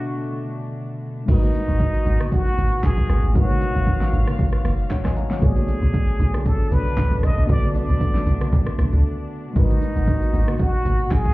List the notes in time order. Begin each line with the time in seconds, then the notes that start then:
Already playing: B2 D3 A3 B3 D4 F#4 A4 D#5 E5
1.26 G#1 A#2 B2 G#3 D#4 F#4, kick, crash, low conga, shaker
1.30 A#4 B4
1.43 low bongo, shaker
1.54 high bongo, low bongo, shaker
1.69 G#1, shaker
1.80 kick, high bongo, shaker
1.94 shaker
2.06 G#1, high bongo, shaker
2.20 cross-stick, low bongo, shaker
2.32 F#4, kick, low conga, shaker
2.46 shaker
2.58 G#1, low bongo, shaker
2.72 shaker
2.83 B1 G#4, kick, clap, high bongo, shaker
2.98 kick, shaker
3.09 G#1, cross-stick, low conga, shaker
3.24 G#1, shaker
3.33 G#1 G#3 D#4 F#4 F5, kick, low conga, shaker
3.37 A#4 B4
3.44 C#5
3.50 low bongo, shaker
3.61 high bongo, low bongo, shaker
3.75 G#1, shaker
3.87 kick, high bongo, shaker
4.01 snare, shaker
4.13 G#1, high bongo, shaker
4.27 cross-stick, low bongo, shaker
4.39 kick, low conga, shaker
4.53 cross-stick, shaker
4.65 F#1, cross-stick, low bongo, shaker
4.79 shaker
4.90 C#5 F#5, kick, clap, high bongo, shaker
5.05 D#5 G#5, kick, cross-stick, snare, shaker
5.16 F5 A#5, low conga, shaker
5.31 C#5 F#5, snare, shaker
5.40 B1 D3 A3 B3 D4 F#4 G#4, kick, low conga, shaker
5.44 C#5 D5
5.56 low bongo, shaker
5.68 high bongo, low bongo, shaker
5.82 B1, shaker
5.94 kick, high bongo, shaker
6.08 shaker
6.20 B1, high bongo, shaker
6.34 cross-stick, low bongo, shaker
6.46 A4, kick, low conga, shaker
6.60 shaker
6.71 B1 B4, low bongo, shaker
6.86 shaker
6.97 C#2, kick, clap, high bongo, shaker
7.11 kick, shaker
7.23 B1 D#5, cross-stick, low conga, shaker
7.37 B1, shaker
7.47 B1 B3 F#4 A4 D5, kick, low conga, shaker
7.51 B4 D5
7.63 low bongo, shaker
7.75 D5, high bongo, low bongo, shaker
7.89 B1, shaker
8.01 kick, high bongo, shaker
8.15 snare, shaker
8.27 B1, high bongo, shaker
8.41 cross-stick, low bongo, shaker
8.53 A1, kick, low conga, shaker
8.66 cross-stick, shaker
8.78 B1, cross-stick, low bongo, shaker
8.93 C#2, shaker
9.53 G#1 A#2 B2 G#3 D#4 F#4, kick, low conga, shaker
9.58 A#4 B4
9.70 low bongo, shaker
9.82 high bongo, low bongo, shaker
9.96 G#1, shaker
10.08 kick, high bongo, shaker
10.22 shaker
10.34 G#1, high bongo, shaker
10.48 cross-stick, low bongo, shaker
10.59 F#4, kick, low conga, shaker
10.74 shaker
10.85 G#1, low bongo, shaker
10.99 shaker
11.11 B1 G#4, kick, clap, high bongo, shaker
11.25 kick, shaker